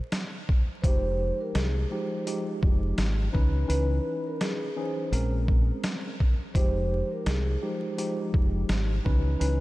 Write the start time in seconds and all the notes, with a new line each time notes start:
0.12 snare, closed hi-hat
0.49 kick
0.82 F1 F3 G#3 D#4 C5, kick, closed hi-hat
0.86 G4
1.41 A#4
1.54 C2 G#4, snare, closed hi-hat
1.89 F3 G#3 D#4 G4 C5
2.26 F3 G#3 D#4 G4, closed hi-hat
2.63 F1, kick
2.98 G#1, snare, closed hi-hat
3.32 C#2 E3 C#4 D#4 B4, kick
3.68 C#2 E3 C#4 D#4 B4, closed hi-hat
4.27 A#4
4.40 G#4, snare, closed hi-hat
4.76 E3 C#4 D#4 G#4 C5
5.12 A#1 G#3 C4 C#4 A#4, closed hi-hat
5.48 kick
5.84 snare, closed hi-hat
6.20 kick
6.54 F1 F3 G#3 D#4 G4 C5, kick, closed hi-hat
7.12 A#4
7.26 C2 G#4, snare, closed hi-hat
7.62 F3 G#3 D#4 G4 C5
7.97 F3 G#3 D#4 G4, closed hi-hat
8.34 F1, kick
8.69 G#1, snare, closed hi-hat
9.04 C#2 E3 C#4 D#4 B4, kick
9.39 C#2 E3 C#4 D#4 B4, closed hi-hat